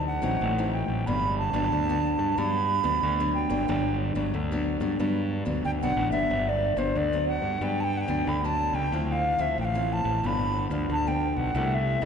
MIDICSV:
0, 0, Header, 1, 4, 480
1, 0, Start_track
1, 0, Key_signature, 1, "major"
1, 0, Tempo, 655022
1, 785, Time_signature, 4, 2, 24, 8
1, 8832, End_track
2, 0, Start_track
2, 0, Title_t, "Flute"
2, 0, Program_c, 0, 73
2, 50, Note_on_c, 0, 78, 92
2, 508, Note_off_c, 0, 78, 0
2, 533, Note_on_c, 0, 79, 79
2, 781, Note_on_c, 0, 83, 92
2, 792, Note_off_c, 0, 79, 0
2, 1008, Note_off_c, 0, 83, 0
2, 1012, Note_on_c, 0, 81, 96
2, 1746, Note_on_c, 0, 83, 104
2, 1757, Note_off_c, 0, 81, 0
2, 2444, Note_off_c, 0, 83, 0
2, 2448, Note_on_c, 0, 79, 92
2, 2906, Note_off_c, 0, 79, 0
2, 4140, Note_on_c, 0, 79, 96
2, 4184, Note_off_c, 0, 79, 0
2, 4263, Note_on_c, 0, 78, 98
2, 4477, Note_off_c, 0, 78, 0
2, 4481, Note_on_c, 0, 76, 104
2, 4754, Note_on_c, 0, 74, 92
2, 4765, Note_off_c, 0, 76, 0
2, 4968, Note_on_c, 0, 72, 85
2, 4978, Note_off_c, 0, 74, 0
2, 5110, Note_on_c, 0, 74, 96
2, 5121, Note_off_c, 0, 72, 0
2, 5332, Note_off_c, 0, 74, 0
2, 5337, Note_on_c, 0, 78, 91
2, 5594, Note_on_c, 0, 79, 101
2, 5605, Note_off_c, 0, 78, 0
2, 5719, Note_on_c, 0, 81, 93
2, 5726, Note_off_c, 0, 79, 0
2, 5745, Note_on_c, 0, 79, 101
2, 5752, Note_off_c, 0, 81, 0
2, 5843, Note_on_c, 0, 78, 93
2, 5851, Note_off_c, 0, 79, 0
2, 5869, Note_on_c, 0, 79, 101
2, 5877, Note_off_c, 0, 78, 0
2, 6070, Note_on_c, 0, 83, 89
2, 6081, Note_off_c, 0, 79, 0
2, 6192, Note_on_c, 0, 81, 97
2, 6203, Note_off_c, 0, 83, 0
2, 6411, Note_on_c, 0, 79, 97
2, 6422, Note_off_c, 0, 81, 0
2, 6684, Note_on_c, 0, 77, 87
2, 6695, Note_off_c, 0, 79, 0
2, 6896, Note_on_c, 0, 76, 92
2, 6907, Note_off_c, 0, 77, 0
2, 7021, Note_off_c, 0, 76, 0
2, 7035, Note_on_c, 0, 79, 90
2, 7069, Note_on_c, 0, 77, 98
2, 7077, Note_off_c, 0, 79, 0
2, 7275, Note_on_c, 0, 81, 96
2, 7286, Note_off_c, 0, 77, 0
2, 7521, Note_on_c, 0, 83, 96
2, 7532, Note_off_c, 0, 81, 0
2, 7797, Note_off_c, 0, 83, 0
2, 8001, Note_on_c, 0, 81, 98
2, 8118, Note_on_c, 0, 79, 88
2, 8129, Note_off_c, 0, 81, 0
2, 8331, Note_on_c, 0, 78, 86
2, 8342, Note_off_c, 0, 79, 0
2, 8607, Note_on_c, 0, 76, 80
2, 8618, Note_off_c, 0, 78, 0
2, 8828, Note_off_c, 0, 76, 0
2, 8832, End_track
3, 0, Start_track
3, 0, Title_t, "Nylon-string guitar"
3, 0, Program_c, 1, 24
3, 0, Note_on_c, 1, 50, 55
3, 160, Note_on_c, 1, 54, 76
3, 166, Note_on_c, 1, 60, 65
3, 170, Note_on_c, 1, 63, 76
3, 278, Note_off_c, 1, 50, 0
3, 301, Note_on_c, 1, 45, 59
3, 374, Note_off_c, 1, 54, 0
3, 377, Note_off_c, 1, 60, 0
3, 378, Note_off_c, 1, 63, 0
3, 427, Note_on_c, 1, 54, 61
3, 430, Note_on_c, 1, 60, 66
3, 432, Note_on_c, 1, 63, 70
3, 748, Note_off_c, 1, 54, 0
3, 748, Note_off_c, 1, 60, 0
3, 750, Note_off_c, 1, 63, 0
3, 759, Note_off_c, 1, 45, 0
3, 785, Note_on_c, 1, 54, 62
3, 786, Note_on_c, 1, 43, 61
3, 787, Note_on_c, 1, 59, 64
3, 791, Note_on_c, 1, 62, 65
3, 1106, Note_off_c, 1, 54, 0
3, 1107, Note_off_c, 1, 59, 0
3, 1109, Note_off_c, 1, 62, 0
3, 1126, Note_on_c, 1, 54, 67
3, 1130, Note_on_c, 1, 59, 62
3, 1130, Note_on_c, 1, 62, 75
3, 1241, Note_off_c, 1, 43, 0
3, 1264, Note_on_c, 1, 50, 60
3, 1337, Note_off_c, 1, 54, 0
3, 1338, Note_off_c, 1, 59, 0
3, 1339, Note_off_c, 1, 62, 0
3, 1385, Note_on_c, 1, 54, 60
3, 1390, Note_on_c, 1, 59, 61
3, 1391, Note_on_c, 1, 62, 75
3, 1707, Note_off_c, 1, 54, 0
3, 1708, Note_off_c, 1, 59, 0
3, 1709, Note_off_c, 1, 62, 0
3, 1720, Note_off_c, 1, 50, 0
3, 1738, Note_on_c, 1, 43, 54
3, 1739, Note_on_c, 1, 54, 57
3, 1742, Note_on_c, 1, 59, 63
3, 1746, Note_on_c, 1, 62, 61
3, 1966, Note_off_c, 1, 54, 0
3, 1968, Note_off_c, 1, 59, 0
3, 1970, Note_off_c, 1, 62, 0
3, 2074, Note_on_c, 1, 54, 65
3, 2078, Note_on_c, 1, 59, 70
3, 2081, Note_on_c, 1, 62, 72
3, 2197, Note_off_c, 1, 43, 0
3, 2218, Note_on_c, 1, 50, 56
3, 2290, Note_off_c, 1, 54, 0
3, 2293, Note_off_c, 1, 59, 0
3, 2293, Note_off_c, 1, 62, 0
3, 2344, Note_on_c, 1, 54, 71
3, 2347, Note_on_c, 1, 59, 67
3, 2349, Note_on_c, 1, 62, 73
3, 2546, Note_off_c, 1, 54, 0
3, 2546, Note_off_c, 1, 59, 0
3, 2548, Note_off_c, 1, 62, 0
3, 2563, Note_on_c, 1, 54, 65
3, 2566, Note_on_c, 1, 59, 74
3, 2569, Note_on_c, 1, 62, 72
3, 2655, Note_off_c, 1, 54, 0
3, 2656, Note_off_c, 1, 59, 0
3, 2658, Note_off_c, 1, 62, 0
3, 2676, Note_off_c, 1, 50, 0
3, 2694, Note_on_c, 1, 43, 57
3, 2698, Note_on_c, 1, 59, 59
3, 2699, Note_on_c, 1, 54, 61
3, 2702, Note_on_c, 1, 62, 67
3, 3022, Note_off_c, 1, 54, 0
3, 3023, Note_off_c, 1, 59, 0
3, 3023, Note_off_c, 1, 62, 0
3, 3043, Note_on_c, 1, 54, 67
3, 3046, Note_on_c, 1, 59, 68
3, 3049, Note_on_c, 1, 62, 68
3, 3155, Note_off_c, 1, 43, 0
3, 3182, Note_on_c, 1, 50, 62
3, 3255, Note_off_c, 1, 54, 0
3, 3256, Note_off_c, 1, 59, 0
3, 3257, Note_off_c, 1, 62, 0
3, 3309, Note_on_c, 1, 54, 65
3, 3315, Note_on_c, 1, 62, 75
3, 3316, Note_on_c, 1, 59, 68
3, 3508, Note_off_c, 1, 54, 0
3, 3510, Note_off_c, 1, 59, 0
3, 3511, Note_off_c, 1, 62, 0
3, 3521, Note_on_c, 1, 54, 62
3, 3526, Note_on_c, 1, 59, 63
3, 3529, Note_on_c, 1, 62, 70
3, 3614, Note_off_c, 1, 54, 0
3, 3616, Note_off_c, 1, 59, 0
3, 3617, Note_off_c, 1, 62, 0
3, 3638, Note_off_c, 1, 50, 0
3, 3659, Note_on_c, 1, 43, 54
3, 3661, Note_on_c, 1, 54, 60
3, 3662, Note_on_c, 1, 59, 60
3, 3665, Note_on_c, 1, 62, 64
3, 3984, Note_off_c, 1, 54, 0
3, 3984, Note_off_c, 1, 59, 0
3, 3986, Note_off_c, 1, 62, 0
3, 3996, Note_on_c, 1, 54, 64
3, 4000, Note_on_c, 1, 59, 70
3, 4004, Note_on_c, 1, 62, 69
3, 4117, Note_off_c, 1, 43, 0
3, 4136, Note_on_c, 1, 50, 60
3, 4211, Note_off_c, 1, 54, 0
3, 4214, Note_off_c, 1, 59, 0
3, 4214, Note_off_c, 1, 62, 0
3, 4269, Note_on_c, 1, 54, 67
3, 4273, Note_on_c, 1, 59, 67
3, 4274, Note_on_c, 1, 62, 75
3, 4468, Note_off_c, 1, 54, 0
3, 4469, Note_off_c, 1, 59, 0
3, 4470, Note_off_c, 1, 62, 0
3, 4484, Note_on_c, 1, 54, 63
3, 4488, Note_on_c, 1, 59, 68
3, 4491, Note_on_c, 1, 62, 78
3, 4596, Note_off_c, 1, 50, 0
3, 4627, Note_on_c, 1, 43, 58
3, 4936, Note_off_c, 1, 54, 0
3, 4937, Note_off_c, 1, 59, 0
3, 4939, Note_off_c, 1, 62, 0
3, 4960, Note_on_c, 1, 54, 59
3, 4964, Note_on_c, 1, 59, 62
3, 4970, Note_on_c, 1, 62, 72
3, 5081, Note_off_c, 1, 43, 0
3, 5099, Note_on_c, 1, 50, 53
3, 5173, Note_off_c, 1, 54, 0
3, 5176, Note_off_c, 1, 59, 0
3, 5178, Note_off_c, 1, 62, 0
3, 5223, Note_on_c, 1, 54, 66
3, 5226, Note_on_c, 1, 59, 63
3, 5231, Note_on_c, 1, 62, 61
3, 5545, Note_off_c, 1, 54, 0
3, 5547, Note_off_c, 1, 59, 0
3, 5549, Note_off_c, 1, 62, 0
3, 5558, Note_off_c, 1, 50, 0
3, 5577, Note_on_c, 1, 43, 52
3, 5580, Note_on_c, 1, 54, 53
3, 5584, Note_on_c, 1, 62, 59
3, 5585, Note_on_c, 1, 59, 51
3, 5807, Note_off_c, 1, 54, 0
3, 5807, Note_off_c, 1, 59, 0
3, 5809, Note_off_c, 1, 62, 0
3, 5919, Note_on_c, 1, 54, 69
3, 5922, Note_on_c, 1, 59, 63
3, 5926, Note_on_c, 1, 62, 68
3, 6038, Note_off_c, 1, 43, 0
3, 6058, Note_on_c, 1, 50, 57
3, 6133, Note_off_c, 1, 54, 0
3, 6135, Note_off_c, 1, 59, 0
3, 6137, Note_off_c, 1, 62, 0
3, 6187, Note_on_c, 1, 54, 64
3, 6191, Note_on_c, 1, 59, 62
3, 6196, Note_on_c, 1, 62, 74
3, 6508, Note_off_c, 1, 54, 0
3, 6510, Note_off_c, 1, 59, 0
3, 6513, Note_off_c, 1, 62, 0
3, 6518, Note_off_c, 1, 50, 0
3, 6542, Note_on_c, 1, 50, 55
3, 6544, Note_on_c, 1, 53, 57
3, 6547, Note_on_c, 1, 60, 53
3, 6549, Note_on_c, 1, 64, 68
3, 6770, Note_off_c, 1, 53, 0
3, 6771, Note_off_c, 1, 60, 0
3, 6772, Note_off_c, 1, 64, 0
3, 6878, Note_on_c, 1, 53, 67
3, 6881, Note_on_c, 1, 60, 64
3, 6882, Note_on_c, 1, 64, 64
3, 7000, Note_off_c, 1, 50, 0
3, 7020, Note_on_c, 1, 45, 53
3, 7094, Note_off_c, 1, 53, 0
3, 7094, Note_off_c, 1, 60, 0
3, 7096, Note_off_c, 1, 64, 0
3, 7143, Note_on_c, 1, 53, 60
3, 7147, Note_on_c, 1, 60, 62
3, 7148, Note_on_c, 1, 64, 66
3, 7467, Note_off_c, 1, 53, 0
3, 7467, Note_off_c, 1, 60, 0
3, 7469, Note_off_c, 1, 64, 0
3, 7479, Note_off_c, 1, 45, 0
3, 7501, Note_on_c, 1, 43, 54
3, 7504, Note_on_c, 1, 53, 51
3, 7507, Note_on_c, 1, 59, 53
3, 7510, Note_on_c, 1, 62, 60
3, 7730, Note_off_c, 1, 53, 0
3, 7731, Note_off_c, 1, 59, 0
3, 7733, Note_off_c, 1, 62, 0
3, 7845, Note_on_c, 1, 53, 63
3, 7849, Note_on_c, 1, 59, 59
3, 7853, Note_on_c, 1, 62, 70
3, 7961, Note_off_c, 1, 43, 0
3, 7987, Note_on_c, 1, 50, 55
3, 8058, Note_off_c, 1, 53, 0
3, 8060, Note_off_c, 1, 59, 0
3, 8061, Note_off_c, 1, 62, 0
3, 8111, Note_on_c, 1, 53, 57
3, 8116, Note_on_c, 1, 59, 62
3, 8117, Note_on_c, 1, 62, 67
3, 8431, Note_off_c, 1, 53, 0
3, 8432, Note_off_c, 1, 59, 0
3, 8434, Note_off_c, 1, 62, 0
3, 8443, Note_off_c, 1, 50, 0
3, 8463, Note_on_c, 1, 48, 62
3, 8464, Note_on_c, 1, 55, 52
3, 8465, Note_on_c, 1, 57, 58
3, 8468, Note_on_c, 1, 64, 65
3, 8787, Note_off_c, 1, 55, 0
3, 8787, Note_off_c, 1, 57, 0
3, 8789, Note_off_c, 1, 64, 0
3, 8805, Note_on_c, 1, 55, 63
3, 8808, Note_on_c, 1, 57, 63
3, 8832, Note_off_c, 1, 48, 0
3, 8832, Note_off_c, 1, 55, 0
3, 8832, Note_off_c, 1, 57, 0
3, 8832, End_track
4, 0, Start_track
4, 0, Title_t, "Fingered electric bass"
4, 0, Program_c, 2, 33
4, 0, Note_on_c, 2, 38, 92
4, 130, Note_off_c, 2, 38, 0
4, 165, Note_on_c, 2, 33, 84
4, 276, Note_off_c, 2, 33, 0
4, 301, Note_on_c, 2, 33, 91
4, 609, Note_off_c, 2, 33, 0
4, 647, Note_on_c, 2, 33, 81
4, 757, Note_off_c, 2, 33, 0
4, 789, Note_on_c, 2, 31, 112
4, 1093, Note_off_c, 2, 31, 0
4, 1122, Note_on_c, 2, 31, 94
4, 1233, Note_off_c, 2, 31, 0
4, 1262, Note_on_c, 2, 38, 90
4, 1569, Note_off_c, 2, 38, 0
4, 1607, Note_on_c, 2, 43, 86
4, 1716, Note_off_c, 2, 43, 0
4, 1742, Note_on_c, 2, 43, 100
4, 2049, Note_off_c, 2, 43, 0
4, 2083, Note_on_c, 2, 38, 90
4, 2194, Note_off_c, 2, 38, 0
4, 2221, Note_on_c, 2, 38, 89
4, 2528, Note_off_c, 2, 38, 0
4, 2562, Note_on_c, 2, 31, 81
4, 2673, Note_off_c, 2, 31, 0
4, 2703, Note_on_c, 2, 31, 121
4, 3009, Note_off_c, 2, 31, 0
4, 3043, Note_on_c, 2, 31, 87
4, 3154, Note_off_c, 2, 31, 0
4, 3178, Note_on_c, 2, 38, 95
4, 3486, Note_off_c, 2, 38, 0
4, 3519, Note_on_c, 2, 43, 92
4, 3631, Note_off_c, 2, 43, 0
4, 3661, Note_on_c, 2, 43, 93
4, 3968, Note_off_c, 2, 43, 0
4, 4006, Note_on_c, 2, 38, 90
4, 4115, Note_off_c, 2, 38, 0
4, 4142, Note_on_c, 2, 38, 89
4, 4250, Note_off_c, 2, 38, 0
4, 4269, Note_on_c, 2, 35, 73
4, 4367, Note_off_c, 2, 35, 0
4, 4371, Note_on_c, 2, 33, 85
4, 4474, Note_off_c, 2, 33, 0
4, 4478, Note_on_c, 2, 31, 78
4, 4597, Note_off_c, 2, 31, 0
4, 4620, Note_on_c, 2, 31, 102
4, 4927, Note_off_c, 2, 31, 0
4, 4954, Note_on_c, 2, 31, 84
4, 5069, Note_off_c, 2, 31, 0
4, 5095, Note_on_c, 2, 38, 86
4, 5405, Note_off_c, 2, 38, 0
4, 5438, Note_on_c, 2, 43, 82
4, 5551, Note_off_c, 2, 43, 0
4, 5577, Note_on_c, 2, 43, 91
4, 5886, Note_off_c, 2, 43, 0
4, 5923, Note_on_c, 2, 38, 84
4, 6034, Note_off_c, 2, 38, 0
4, 6060, Note_on_c, 2, 38, 84
4, 6368, Note_off_c, 2, 38, 0
4, 6400, Note_on_c, 2, 37, 78
4, 6513, Note_off_c, 2, 37, 0
4, 6539, Note_on_c, 2, 38, 100
4, 6848, Note_off_c, 2, 38, 0
4, 6882, Note_on_c, 2, 38, 85
4, 6994, Note_off_c, 2, 38, 0
4, 7020, Note_on_c, 2, 33, 92
4, 7329, Note_off_c, 2, 33, 0
4, 7358, Note_on_c, 2, 33, 89
4, 7472, Note_off_c, 2, 33, 0
4, 7499, Note_on_c, 2, 31, 86
4, 7808, Note_off_c, 2, 31, 0
4, 7842, Note_on_c, 2, 38, 82
4, 7954, Note_off_c, 2, 38, 0
4, 7982, Note_on_c, 2, 38, 88
4, 8290, Note_off_c, 2, 38, 0
4, 8328, Note_on_c, 2, 35, 79
4, 8438, Note_off_c, 2, 35, 0
4, 8461, Note_on_c, 2, 36, 104
4, 8770, Note_off_c, 2, 36, 0
4, 8805, Note_on_c, 2, 36, 87
4, 8832, Note_off_c, 2, 36, 0
4, 8832, End_track
0, 0, End_of_file